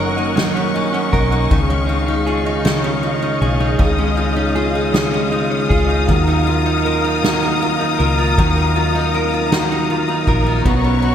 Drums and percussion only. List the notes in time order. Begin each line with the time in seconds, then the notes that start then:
0.37 snare, ride
0.75 ride
1.13 kick, ride
1.51 kick, ride
1.89 ride
2.27 ride
2.65 snare, ride
3.04 ride
3.42 ride
3.79 kick, ride
4.18 ride
4.56 ride
4.94 snare
5.33 ride
5.70 kick, ride
6.09 kick, ride
6.47 ride
6.86 ride
7.24 snare, ride
7.63 ride
8.01 ride
8.38 kick, ride
8.77 ride
9.14 ride
9.52 snare, ride
9.90 ride
10.27 kick, ride
10.65 kick, ride
11.03 ride